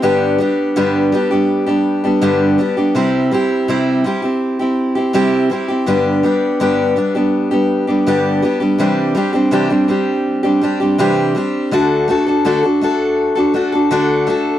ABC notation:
X:1
M:4/4
L:1/16
Q:1/4=82
K:G
V:1 name="Steel-string acoustic guitar"
[G,,D,G,B,DG]2 [G,B,DG]2 [G,,D,G,B,DG]2 [G,B,DG] [G,B,DG]2 [G,B,DG]2 [G,B,DG] [G,,D,G,B,DG]2 [G,B,DG] [G,B,DG] | [C,G,CEG]2 [G,CEG]2 [C,G,CEG]2 [G,CEG] [CEG]2 [CEG]2 [CEG] [C,G,CEG]2 [G,CEG] [CEG] | [G,,D,G,B,DG]2 [G,B,DG]2 [G,,D,G,B,DG]2 [G,B,DG] [G,B,DG]2 [G,B,DG]2 [G,B,DG] [G,,D,G,B,DG]2 [G,B,DG] [G,B,DG] | [C,E,G,CDG]2 [G,CDG] [G,CDG] [C,E,G,CDG] [G,CDG] [G,CDG]3 [G,CDG] [G,CDG] [G,CDG] [C,E,G,CDG]2 [G,CDG]2 |
[D,A,DFA]2 [A,DFA] [DFA] [D,A,DFA] [DFA] [A,DFA]3 [DFA] [A,DFA] [DFA] [D,A,DFA]2 [A,DFA]2 |]